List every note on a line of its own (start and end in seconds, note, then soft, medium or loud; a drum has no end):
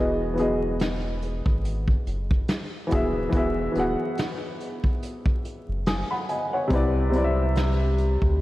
0.00 1.41 E1 loud
0.00 0.32 E3 medium
0.00 0.34 B3 medium
0.00 0.35 F#4 medium
0.00 0.36 G#4 medium
0.00 0.37 D#5 medium
0.34 1.95 E3 medium
0.34 1.95 B3 medium
0.34 1.96 F#4 medium
0.34 closed hi-hat medium
0.39 1.98 G#4 medium
0.39 1.98 D#5 medium
0.80 snare loud
0.80 closed hi-hat medium
1.22 closed hi-hat medium
1.46 1.97 G#1 medium
1.46 kick medium
1.65 closed hi-hat medium
1.88 kick medium
2.06 2.42 F#1 medium
2.06 closed hi-hat medium
2.31 kick medium
2.48 snare loud
2.48 closed hi-hat medium
2.87 3.28 E3 medium
2.87 3.29 B3 medium
2.87 3.30 F#4 medium
2.87 closed hi-hat medium
2.92 3.27 D#1 medium
2.92 3.31 G#4 medium
2.92 3.33 E5 medium
2.92 kick medium
3.29 3.68 E1 loud
3.29 3.70 E3 medium
3.29 3.72 B3 medium
3.29 3.73 F#4 medium
3.29 kick loud
3.29 closed hi-hat medium
3.35 3.74 G#4 medium
3.35 3.75 E5 medium
3.72 3.95 D#1 medium
3.72 5.33 E3 medium
3.72 5.34 B3 medium
3.72 closed hi-hat medium
3.76 5.35 F#4 medium
3.76 5.36 G#4 medium
3.76 5.37 F#5 medium
4.17 snare loud
4.17 closed hi-hat medium
4.60 closed hi-hat medium
4.84 kick medium
5.03 closed hi-hat medium
5.26 kick medium
5.45 closed hi-hat medium
5.68 6.04 F#1 medium
5.86 6.10 G#5 medium
5.86 6.09 D#6 medium
5.86 snare loud
5.86 closed hi-hat medium
6.11 6.28 F#5 medium
6.11 6.28 B5 medium
6.29 6.52 D#5 medium
6.29 6.52 G#5 medium
6.29 closed hi-hat medium
6.53 6.93 C#5 medium
6.53 6.93 F#5 medium
6.68 8.17 C2 loud
6.68 7.08 C3 medium
6.68 7.10 C4 medium
6.68 7.11 E4 medium
6.68 kick loud
6.68 closed hi-hat medium
6.73 7.12 B4 medium
6.73 7.13 D5 medium
7.10 8.41 C3 medium
7.10 8.41 C4 medium
7.10 8.41 E4 medium
7.10 closed hi-hat medium
7.16 8.41 B4 medium
7.16 7.23 D5 medium
7.24 8.41 E5 medium
7.55 snare loud
7.55 closed hi-hat medium
7.98 closed hi-hat medium
8.22 8.41 D2 medium
8.22 kick medium